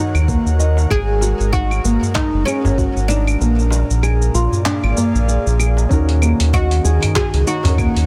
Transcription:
Already playing: D#3 D#4 F#4 A#4 C#5 F#5
0.15 D#2, claves, shaker
0.28 A#3, kick, shaker
0.45 D#2, darbuka tek, shaker
0.59 D#5, shaker
0.77 darbuka ka, darbuka tek, shaker
0.90 G#1 G#3 G#4, kick, claves, shaker
1.08 darbuka ka
1.21 F#4, darbuka tek, shaker
1.40 G#1, shaker
1.53 D#4 F#4, kick, shaker
1.71 claves, shaker
1.84 G#1 A#3, shaker
2.02 darbuka ka, darbuka tek, darbuka dum, shaker
2.14 D#4 D#5, kick, clap, shaker
2.34 F#1
2.45 C#4 G#4, claves, shaker
2.64 G#1, darbuka tek, darbuka dum, shaker
2.78 F#4, kick, shaker
2.96 G#1, shaker
3.08 D4 D#4, shaker
3.27 claves, shaker
3.40 A#1 A#2 A#3, shaker
3.58 darbuka ka, shaker
3.71 D5, darbuka tek, shaker
3.90 A#1, shaker
4.03 G#4, claves, shaker
4.21 A#3, shaker
4.34 A#1 F4 D5, shaker
4.52 G#4 F5, darbuka ka, darbuka tek, darbuka dum, shaker
4.65 D4, clap, shaker
4.83 G#1, claves
4.96 A#3, darbuka ka, darbuka tek, darbuka dum, shaker
5.15 A#1, shaker
5.28 D5, shaker
5.46 A#1, darbuka tek, shaker
5.59 G#4, claves, shaker
5.77 darbuka ka, darbuka tek, shaker
5.89 D#2 D#3 C#4 D#4 F#4 A#4, kick, shaker
6.09 closed hi-hat
6.17 D#4
6.22 A#3, darbuka tek, claves, shaker
6.40 D#2, closed hi-hat, darbuka ka, shaker
6.53 F#4 D#5, kick, shaker
6.71 closed hi-hat, shaker
6.85 D#2 G#4, shaker
7.02 A#4 C#5 F#5, closed hi-hat, darbuka tek, darbuka dum, claves, shaker
7.16 F#4 G#4, kick, clap, shaker
7.34 C#2, closed hi-hat, darbuka tek
7.47 D#4 F#4, shaker
7.63 D#2 C#4 D#4 F#4 A#4, closed hi-hat, darbuka tek, darbuka dum, shaker
7.78 A#3, kick, claves, shaker
7.96 D#2, closed hi-hat, shaker

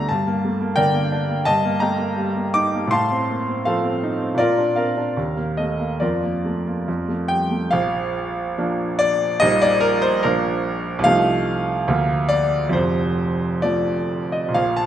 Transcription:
Already playing: D3 A3 D4 A4 D5 F#5 A#5
0.09 G2 A5
0.27 A#3
0.45 A3
0.61 A#3
0.76 D3 A#4 D5 G5
0.94 A#3
1.12 D4
1.29 A#3
1.45 G2 D#5 A5
1.65 A#3
1.80 A3 D#5 G5 A#5
1.99 A#3
2.16 G3
2.36 A#3
2.54 D#4 D6
2.75 A#3
2.87 A2 C6
2.92 F5 A5
3.11 C4
3.30 A#3
3.48 C4
3.65 F3 A4 C5 F5
3.84 C4
4.03 D#4
4.22 C4
4.35 A#2 D5
4.39 F4 A#4
4.58 D4
4.76 C4 A#4 F5
4.97 D4
5.17 D#2
5.37 A#3
5.57 A3 D#5
5.79 A#3
6.00 F2 F4 A#4 D5
6.23 A#3
6.45 A3
6.67 A#3
6.88 F2
7.09 A3
7.28 G3 G5
7.51 A3
7.71 A#1 F5
8.58 F3 A#3 D4
8.99 D5
9.40 A#1 G3 A#3 D#4 D#5
9.62 D5
9.80 A#4
10.02 C5
10.23 A#1 F3 A#3 D4 A#4
10.99 C2
11.04 F3 A3 D#4 F5
11.88 D2 F3 A#3 F4
12.29 D5
12.69 F1 F2 C5
13.62 F3 A3 F4 D5
14.32 D#5
14.48 A#2
14.54 A#1 F5
14.77 A5

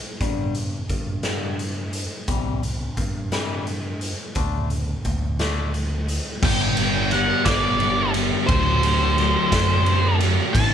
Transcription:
0.21 G2 D3 G3, kick, closed hi-hat
0.55 G2 D3, closed hi-hat
0.89 G2 D3, kick, closed hi-hat
1.23 G2 D3 G3, snare, closed hi-hat
1.59 G2 D3, closed hi-hat
1.93 closed hi-hat
2.28 C2 C3 E3 G3, kick, closed hi-hat
2.63 C3 E3, closed hi-hat
2.97 G2 C3 E3, kick, closed hi-hat
3.32 C3 E3 G3, snare, closed hi-hat
3.67 C3 E3, closed hi-hat
4.01 closed hi-hat
4.35 D2 D3 A3 D4, kick, closed hi-hat
4.70 D3 A3, closed hi-hat
5.05 D2 D3 A3, kick, closed hi-hat
5.39 D3 A3 D4, snare, closed hi-hat
5.74 D3 A3, closed hi-hat
6.08 closed hi-hat
6.42 G1 G2 D3 G3 B3 D4 G5, kick, crash
6.77 B3 D4, ride
6.81 G3
7.11 D3 G3 B3 F#5, ride
7.16 D4
7.45 G1 D4 D5, kick, snare, ride
7.50 G3 B3
7.80 D3 G3, ride
7.84 B3 D4
8.14 G3 B3 D4, ride
8.47 D2 D3 C5, kick, ride
8.51 F#3 A3 D4
8.83 F#3 A3 D4, ride
9.18 D3 F#3 A3 D4, ride
9.52 F#2 F#3 A3 D4, kick, snare, ride
9.86 D3 F#3 A3 D4, ride
10.20 A3 D4, ride
10.25 F#3
10.53 A1 A2 E3 A3 A5, kick, crash
10.57 C4 E4

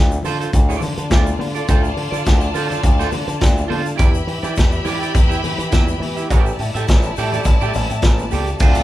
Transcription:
Already playing: D2
0.12 muted clean electric guitar stroke, shaker
0.23 D3 F4 A4 C5, open hi-hat, low conga, shaker
0.40 F4 A4 C5, closed hi-hat, shaker
0.53 D2 F4 D5 A5, muted clean electric guitar stroke, kick, closed hi-hat, muted conga, shaker
0.69 F4 A4 D5, shaker
0.80 D3, muted clean electric guitar stroke, open hi-hat, muted conga, low conga, shaker
0.98 D3, muted clean electric guitar stroke, closed hi-hat, shaker
1.10 D2 F4 A4 D5, kick, snare, closed hi-hat, high conga, shaker
1.27 muted clean electric guitar stroke, shaker
1.38 D3, muted clean electric guitar stroke, open hi-hat, high conga
1.55 F4 A4 D5, closed hi-hat, shaker
1.68 D2 F4 A4 C5, kick, closed hi-hat, shaker
1.84 muted clean electric guitar stroke, shaker
1.97 D3, muted clean electric guitar stroke, open hi-hat
2.11 D3 F4 A4 D5, closed hi-hat, shaker
2.26 D2, muted clean electric guitar stroke, kick, snare, closed hi-hat, high conga, shaker
2.41 muted clean electric guitar stroke, shaker
2.54 D3 F4 A4 C5, open hi-hat, shaker
2.69 F4 A4 C5, closed hi-hat, low conga, shaker
2.83 D2, muted clean electric guitar stroke, kick, closed hi-hat, muted conga, shaker
2.99 F4 A4 C5, snare, shaker
3.11 D3, muted clean electric guitar stroke, open hi-hat, muted conga, low conga, shaker
3.28 D3, muted clean electric guitar stroke, closed hi-hat, shaker
3.41 D2, kick, snare, closed hi-hat, high conga, shaker
3.56 muted clean electric guitar stroke, shaker
3.68 D3 F4 A4 C5, open hi-hat, high conga
3.84 muted clean electric guitar stroke, closed hi-hat, shaker
3.96 E2 E4 G4 D5, kick, closed hi-hat, shaker
4.00 E5 B5
4.13 muted clean electric guitar stroke, shaker
4.27 E3, muted clean electric guitar stroke, open hi-hat
4.43 E3 E4 G4 D5, closed hi-hat, shaker
4.56 E2, muted clean electric guitar stroke, kick, snare, closed hi-hat, high conga, shaker
4.72 muted clean electric guitar stroke, shaker
4.85 E3 E4 G4 D5, open hi-hat, low conga, shaker
5.00 E4 G4 D5, closed hi-hat, shaker
5.14 E2, muted clean electric guitar stroke, kick, closed hi-hat, muted conga, shaker
5.29 E4 G4 E5, shaker
5.44 E3, muted clean electric guitar stroke, open hi-hat, muted conga, low conga, shaker
5.58 E3, muted clean electric guitar stroke, closed hi-hat, shaker
5.71 E2 E4 G4 E5, kick, snare, closed hi-hat, high conga, shaker
5.87 muted clean electric guitar stroke, shaker
6.00 E3, muted clean electric guitar stroke, open hi-hat, high conga
6.17 E4 G4 E5, closed hi-hat, shaker
6.30 A1 E4 G4 A4 D5 A5, kick, closed hi-hat, muted conga, shaker
6.46 muted clean electric guitar stroke, shaker
6.59 A2, muted clean electric guitar stroke, open hi-hat, shaker
6.75 A2 G4 A4 E5, closed hi-hat, shaker
6.88 A1, muted clean electric guitar stroke, kick, snare, closed hi-hat, high conga, shaker
7.03 muted clean electric guitar stroke, shaker
7.17 A2 G4 A4 D5, open hi-hat, shaker
7.32 G4 A4 D5, closed hi-hat, low conga, shaker
7.44 A1, muted clean electric guitar stroke, kick, closed hi-hat, muted conga, shaker
7.61 A2 G4 A4 D5, shaker
7.74 A1, muted clean electric guitar stroke, open hi-hat, muted conga, low conga, shaker
7.90 A2, muted clean electric guitar stroke, closed hi-hat, shaker
8.02 A1, muted clean electric guitar stroke, kick, snare, closed hi-hat, high conga, shaker
8.18 muted clean electric guitar stroke, high conga, shaker
8.31 C#2 G4 A4 D5, open hi-hat, high conga, shaker
8.47 muted clean electric guitar stroke, closed hi-hat, shaker
8.59 D2 C3 F3 A3 D4 F4 A4 C5 A5, kick, crash, shaker
8.75 muted clean electric guitar stroke, closed hi-hat, shaker

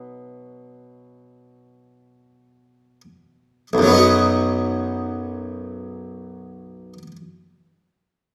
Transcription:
Already playing: B2 F#3 B3 D#4 B4
3.73 B1
3.78 F#2
3.83 F#3
3.87 B3
3.92 D#4
3.96 F#4

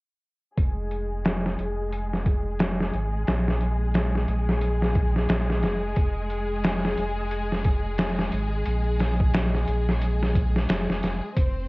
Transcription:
0.57 F1 G#3 G#4, kick, closed hi-hat
0.91 closed hi-hat
1.25 snare, closed hi-hat
1.46 snare
1.59 F1, closed hi-hat
1.92 closed hi-hat
2.13 snare
2.26 kick, closed hi-hat
2.59 snare, closed hi-hat
2.80 snare
2.93 G#1, closed hi-hat
3.27 A#1, snare, closed hi-hat
3.48 snare
3.61 closed hi-hat
3.94 snare, closed hi-hat
4.16 snare
4.28 A#1, closed hi-hat
4.49 snare
4.62 closed hi-hat
4.82 snare
4.95 kick, closed hi-hat
5.16 snare
5.29 A#1, snare, closed hi-hat
5.50 snare
5.63 F1, snare, closed hi-hat
5.96 F1, kick, closed hi-hat
6.30 closed hi-hat
6.64 snare, closed hi-hat
6.85 snare
6.97 F1, closed hi-hat
7.31 closed hi-hat
7.52 snare
7.64 kick, closed hi-hat
7.98 snare, closed hi-hat
8.19 snare
8.32 G#1, closed hi-hat
8.66 A#1, closed hi-hat
9.00 snare, closed hi-hat
9.20 kick
9.34 snare, closed hi-hat
9.55 snare
9.68 A#1, closed hi-hat
9.89 snare
10.02 closed hi-hat
10.23 snare
10.35 kick, closed hi-hat
10.56 snare
10.69 F1, snare, closed hi-hat
10.90 F1, snare
11.03 F1, snare, closed hi-hat
11.36 F1 C4 C5, kick, closed hi-hat

